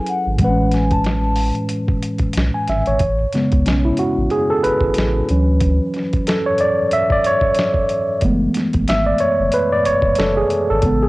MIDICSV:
0, 0, Header, 1, 5, 480
1, 0, Start_track
1, 0, Key_signature, 3, "major"
1, 0, Tempo, 652174
1, 289, Time_signature, 4, 2, 24, 8
1, 8160, End_track
2, 0, Start_track
2, 0, Title_t, "Vibraphone"
2, 0, Program_c, 0, 11
2, 67, Note_on_c, 0, 78, 84
2, 171, Note_off_c, 0, 78, 0
2, 305, Note_on_c, 0, 78, 87
2, 521, Note_off_c, 0, 78, 0
2, 542, Note_on_c, 0, 80, 92
2, 661, Note_off_c, 0, 80, 0
2, 677, Note_on_c, 0, 81, 100
2, 1121, Note_off_c, 0, 81, 0
2, 8160, End_track
3, 0, Start_track
3, 0, Title_t, "Tine electric piano"
3, 0, Program_c, 1, 4
3, 0, Control_c, 1, 64, 127
3, 0, Note_on_c, 1, 54, 61
3, 0, Note_on_c, 1, 61, 56
3, 0, Note_on_c, 1, 64, 55
3, 0, Note_on_c, 1, 68, 55
3, 0, Note_on_c, 1, 69, 56
3, 0, Note_on_c, 1, 71, 70
3, 248, Note_off_c, 1, 54, 0
3, 254, Note_off_c, 1, 61, 0
3, 260, Note_off_c, 1, 64, 0
3, 266, Note_off_c, 1, 68, 0
3, 268, Note_on_c, 1, 45, 61
3, 272, Note_off_c, 1, 69, 0
3, 277, Note_off_c, 1, 71, 0
3, 284, Note_on_c, 1, 52, 55
3, 297, Control_c, 1, 64, 0
3, 299, Note_on_c, 1, 56, 55
3, 310, Note_on_c, 1, 60, 46
3, 326, Note_on_c, 1, 71, 67
3, 353, Note_off_c, 1, 60, 0
3, 360, Note_on_c, 1, 61, 58
3, 433, Control_c, 1, 64, 127
3, 1871, Note_on_c, 1, 80, 57
3, 1967, Note_off_c, 1, 80, 0
3, 1983, Note_on_c, 1, 76, 65
3, 2104, Note_off_c, 1, 76, 0
3, 2114, Note_on_c, 1, 73, 66
3, 2169, Note_off_c, 1, 45, 0
3, 2177, Note_off_c, 1, 52, 0
3, 2184, Note_off_c, 1, 56, 0
3, 2198, Note_off_c, 1, 71, 0
3, 2215, Note_off_c, 1, 61, 0
3, 2220, Control_c, 1, 64, 0
3, 2337, Note_off_c, 1, 73, 0
3, 2346, Control_c, 1, 64, 127
3, 2458, Note_on_c, 1, 49, 54
3, 2462, Note_on_c, 1, 56, 47
3, 2464, Note_on_c, 1, 59, 54
3, 2698, Note_on_c, 1, 61, 64
3, 2784, Note_off_c, 1, 49, 0
3, 2786, Note_off_c, 1, 56, 0
3, 2787, Note_off_c, 1, 59, 0
3, 2819, Note_off_c, 1, 61, 0
3, 2832, Note_on_c, 1, 64, 75
3, 2936, Note_off_c, 1, 64, 0
3, 2936, Note_on_c, 1, 66, 79
3, 3173, Note_on_c, 1, 68, 91
3, 3180, Note_off_c, 1, 66, 0
3, 3297, Note_off_c, 1, 68, 0
3, 3313, Note_on_c, 1, 69, 92
3, 3410, Note_on_c, 1, 71, 92
3, 3416, Note_off_c, 1, 69, 0
3, 3896, Control_c, 1, 64, 0
3, 3898, Note_on_c, 1, 52, 51
3, 3901, Note_on_c, 1, 54, 46
3, 3907, Note_on_c, 1, 61, 55
3, 4041, Control_c, 1, 64, 127
3, 4100, Note_off_c, 1, 71, 0
3, 4224, Note_off_c, 1, 52, 0
3, 4226, Note_off_c, 1, 54, 0
3, 4229, Note_off_c, 1, 61, 0
3, 4621, Note_on_c, 1, 69, 77
3, 4754, Note_off_c, 1, 69, 0
3, 4756, Note_on_c, 1, 73, 85
3, 4801, Note_off_c, 1, 73, 0
3, 4862, Note_on_c, 1, 74, 89
3, 5101, Note_on_c, 1, 76, 101
3, 5102, Note_off_c, 1, 74, 0
3, 5234, Note_off_c, 1, 76, 0
3, 5242, Note_on_c, 1, 74, 89
3, 5341, Note_off_c, 1, 74, 0
3, 5348, Note_on_c, 1, 73, 89
3, 6029, Note_off_c, 1, 73, 0
3, 6059, Control_c, 1, 64, 0
3, 6061, Note_on_c, 1, 52, 54
3, 6064, Note_on_c, 1, 56, 47
3, 6067, Note_on_c, 1, 57, 52
3, 6068, Note_on_c, 1, 59, 58
3, 6196, Control_c, 1, 64, 127
3, 6543, Note_on_c, 1, 76, 85
3, 6662, Note_off_c, 1, 76, 0
3, 6671, Note_on_c, 1, 74, 78
3, 6745, Note_off_c, 1, 52, 0
3, 6747, Note_off_c, 1, 56, 0
3, 6748, Note_off_c, 1, 57, 0
3, 6749, Note_off_c, 1, 59, 0
3, 6765, Note_off_c, 1, 74, 0
3, 6774, Note_on_c, 1, 73, 86
3, 7018, Note_off_c, 1, 73, 0
3, 7019, Note_on_c, 1, 71, 87
3, 7140, Note_off_c, 1, 71, 0
3, 7156, Note_on_c, 1, 74, 89
3, 7201, Note_off_c, 1, 74, 0
3, 7258, Note_on_c, 1, 73, 87
3, 7498, Note_on_c, 1, 69, 81
3, 7500, Note_off_c, 1, 73, 0
3, 7619, Note_off_c, 1, 69, 0
3, 7633, Note_on_c, 1, 68, 84
3, 7852, Note_off_c, 1, 68, 0
3, 7875, Note_on_c, 1, 69, 90
3, 7979, Control_c, 1, 64, 0
3, 7984, Note_on_c, 1, 49, 51
3, 7985, Note_on_c, 1, 56, 47
3, 7991, Note_on_c, 1, 59, 60
3, 8116, Note_on_c, 1, 68, 81
3, 8117, Note_off_c, 1, 69, 0
3, 8119, Control_c, 1, 64, 127
3, 8160, Note_off_c, 1, 49, 0
3, 8160, Note_off_c, 1, 56, 0
3, 8160, Note_off_c, 1, 59, 0
3, 8160, Note_off_c, 1, 68, 0
3, 8160, End_track
4, 0, Start_track
4, 0, Title_t, "Sub bass"
4, 0, Program_c, 2, 38
4, 195, Note_on_c, 2, 32, 91
4, 273, Note_off_c, 2, 32, 0
4, 292, Note_on_c, 2, 33, 107
4, 1116, Note_off_c, 2, 33, 0
4, 1740, Note_on_c, 2, 35, 88
4, 1841, Note_off_c, 2, 35, 0
4, 1977, Note_on_c, 2, 32, 82
4, 2079, Note_off_c, 2, 32, 0
4, 2114, Note_on_c, 2, 32, 89
4, 2192, Note_off_c, 2, 32, 0
4, 2214, Note_on_c, 2, 33, 91
4, 2399, Note_off_c, 2, 33, 0
4, 2600, Note_on_c, 2, 37, 85
4, 2675, Note_off_c, 2, 37, 0
4, 2697, Note_on_c, 2, 35, 87
4, 2881, Note_off_c, 2, 35, 0
4, 3073, Note_on_c, 2, 33, 79
4, 3152, Note_off_c, 2, 33, 0
4, 3420, Note_on_c, 2, 32, 48
4, 3471, Note_off_c, 2, 32, 0
4, 3542, Note_on_c, 2, 32, 91
4, 3624, Note_off_c, 2, 32, 0
4, 3661, Note_on_c, 2, 33, 95
4, 3844, Note_off_c, 2, 33, 0
4, 3901, Note_on_c, 2, 38, 99
4, 4271, Note_off_c, 2, 38, 0
4, 6055, Note_on_c, 2, 30, 101
4, 6240, Note_off_c, 2, 30, 0
4, 6439, Note_on_c, 2, 33, 90
4, 6515, Note_off_c, 2, 33, 0
4, 6542, Note_on_c, 2, 32, 89
4, 6724, Note_off_c, 2, 32, 0
4, 6915, Note_on_c, 2, 30, 93
4, 6993, Note_off_c, 2, 30, 0
4, 7258, Note_on_c, 2, 28, 50
4, 7310, Note_off_c, 2, 28, 0
4, 7381, Note_on_c, 2, 28, 91
4, 7464, Note_off_c, 2, 28, 0
4, 7498, Note_on_c, 2, 30, 102
4, 7682, Note_off_c, 2, 30, 0
4, 7876, Note_on_c, 2, 32, 99
4, 7953, Note_off_c, 2, 32, 0
4, 7975, Note_on_c, 2, 33, 101
4, 8160, Note_off_c, 2, 33, 0
4, 8160, End_track
5, 0, Start_track
5, 0, Title_t, "Drums"
5, 48, Note_on_c, 9, 42, 51
5, 121, Note_off_c, 9, 42, 0
5, 282, Note_on_c, 9, 42, 75
5, 287, Note_on_c, 9, 36, 94
5, 356, Note_off_c, 9, 42, 0
5, 361, Note_off_c, 9, 36, 0
5, 526, Note_on_c, 9, 42, 57
5, 546, Note_on_c, 9, 38, 33
5, 599, Note_off_c, 9, 42, 0
5, 619, Note_off_c, 9, 38, 0
5, 667, Note_on_c, 9, 42, 33
5, 672, Note_on_c, 9, 36, 86
5, 741, Note_off_c, 9, 42, 0
5, 746, Note_off_c, 9, 36, 0
5, 768, Note_on_c, 9, 42, 72
5, 783, Note_on_c, 9, 38, 117
5, 842, Note_off_c, 9, 42, 0
5, 857, Note_off_c, 9, 38, 0
5, 998, Note_on_c, 9, 46, 45
5, 1072, Note_off_c, 9, 46, 0
5, 1141, Note_on_c, 9, 42, 31
5, 1214, Note_off_c, 9, 42, 0
5, 1243, Note_on_c, 9, 42, 80
5, 1316, Note_off_c, 9, 42, 0
5, 1386, Note_on_c, 9, 36, 86
5, 1459, Note_off_c, 9, 36, 0
5, 1490, Note_on_c, 9, 42, 70
5, 1564, Note_off_c, 9, 42, 0
5, 1607, Note_on_c, 9, 42, 33
5, 1615, Note_on_c, 9, 36, 73
5, 1680, Note_off_c, 9, 42, 0
5, 1689, Note_off_c, 9, 36, 0
5, 1715, Note_on_c, 9, 42, 74
5, 1747, Note_on_c, 9, 38, 91
5, 1789, Note_off_c, 9, 42, 0
5, 1820, Note_off_c, 9, 38, 0
5, 1969, Note_on_c, 9, 42, 57
5, 1983, Note_on_c, 9, 38, 34
5, 2043, Note_off_c, 9, 42, 0
5, 2056, Note_off_c, 9, 38, 0
5, 2103, Note_on_c, 9, 42, 31
5, 2177, Note_off_c, 9, 42, 0
5, 2203, Note_on_c, 9, 42, 67
5, 2209, Note_on_c, 9, 36, 94
5, 2277, Note_off_c, 9, 42, 0
5, 2283, Note_off_c, 9, 36, 0
5, 2447, Note_on_c, 9, 42, 53
5, 2467, Note_on_c, 9, 38, 33
5, 2521, Note_off_c, 9, 42, 0
5, 2541, Note_off_c, 9, 38, 0
5, 2588, Note_on_c, 9, 42, 35
5, 2594, Note_on_c, 9, 36, 85
5, 2662, Note_off_c, 9, 42, 0
5, 2668, Note_off_c, 9, 36, 0
5, 2693, Note_on_c, 9, 42, 71
5, 2708, Note_on_c, 9, 38, 112
5, 2767, Note_off_c, 9, 42, 0
5, 2782, Note_off_c, 9, 38, 0
5, 2922, Note_on_c, 9, 42, 59
5, 2996, Note_off_c, 9, 42, 0
5, 3167, Note_on_c, 9, 42, 75
5, 3240, Note_off_c, 9, 42, 0
5, 3415, Note_on_c, 9, 42, 63
5, 3489, Note_off_c, 9, 42, 0
5, 3537, Note_on_c, 9, 36, 74
5, 3611, Note_off_c, 9, 36, 0
5, 3636, Note_on_c, 9, 42, 72
5, 3668, Note_on_c, 9, 38, 92
5, 3710, Note_off_c, 9, 42, 0
5, 3741, Note_off_c, 9, 38, 0
5, 3892, Note_on_c, 9, 42, 53
5, 3965, Note_off_c, 9, 42, 0
5, 4126, Note_on_c, 9, 42, 71
5, 4130, Note_on_c, 9, 36, 100
5, 4199, Note_off_c, 9, 42, 0
5, 4204, Note_off_c, 9, 36, 0
5, 4370, Note_on_c, 9, 42, 55
5, 4390, Note_on_c, 9, 38, 32
5, 4443, Note_off_c, 9, 42, 0
5, 4463, Note_off_c, 9, 38, 0
5, 4510, Note_on_c, 9, 42, 34
5, 4514, Note_on_c, 9, 36, 82
5, 4584, Note_off_c, 9, 42, 0
5, 4588, Note_off_c, 9, 36, 0
5, 4614, Note_on_c, 9, 42, 70
5, 4629, Note_on_c, 9, 38, 118
5, 4688, Note_off_c, 9, 42, 0
5, 4703, Note_off_c, 9, 38, 0
5, 4843, Note_on_c, 9, 42, 62
5, 4917, Note_off_c, 9, 42, 0
5, 5087, Note_on_c, 9, 42, 78
5, 5161, Note_off_c, 9, 42, 0
5, 5226, Note_on_c, 9, 36, 82
5, 5300, Note_off_c, 9, 36, 0
5, 5332, Note_on_c, 9, 42, 67
5, 5405, Note_off_c, 9, 42, 0
5, 5456, Note_on_c, 9, 36, 74
5, 5530, Note_off_c, 9, 36, 0
5, 5554, Note_on_c, 9, 42, 72
5, 5585, Note_on_c, 9, 38, 93
5, 5627, Note_off_c, 9, 42, 0
5, 5659, Note_off_c, 9, 38, 0
5, 5696, Note_on_c, 9, 36, 87
5, 5770, Note_off_c, 9, 36, 0
5, 5807, Note_on_c, 9, 42, 53
5, 5880, Note_off_c, 9, 42, 0
5, 6042, Note_on_c, 9, 42, 72
5, 6049, Note_on_c, 9, 36, 100
5, 6116, Note_off_c, 9, 42, 0
5, 6123, Note_off_c, 9, 36, 0
5, 6287, Note_on_c, 9, 42, 56
5, 6307, Note_on_c, 9, 38, 34
5, 6361, Note_off_c, 9, 42, 0
5, 6380, Note_off_c, 9, 38, 0
5, 6426, Note_on_c, 9, 42, 36
5, 6434, Note_on_c, 9, 36, 89
5, 6500, Note_off_c, 9, 42, 0
5, 6507, Note_off_c, 9, 36, 0
5, 6532, Note_on_c, 9, 42, 74
5, 6547, Note_on_c, 9, 38, 119
5, 6606, Note_off_c, 9, 42, 0
5, 6621, Note_off_c, 9, 38, 0
5, 6759, Note_on_c, 9, 42, 61
5, 6833, Note_off_c, 9, 42, 0
5, 7005, Note_on_c, 9, 42, 81
5, 7078, Note_off_c, 9, 42, 0
5, 7252, Note_on_c, 9, 42, 69
5, 7326, Note_off_c, 9, 42, 0
5, 7376, Note_on_c, 9, 36, 80
5, 7450, Note_off_c, 9, 36, 0
5, 7473, Note_on_c, 9, 42, 78
5, 7505, Note_on_c, 9, 38, 94
5, 7547, Note_off_c, 9, 42, 0
5, 7579, Note_off_c, 9, 38, 0
5, 7730, Note_on_c, 9, 42, 54
5, 7804, Note_off_c, 9, 42, 0
5, 7964, Note_on_c, 9, 42, 75
5, 7970, Note_on_c, 9, 36, 105
5, 8038, Note_off_c, 9, 42, 0
5, 8044, Note_off_c, 9, 36, 0
5, 8160, End_track
0, 0, End_of_file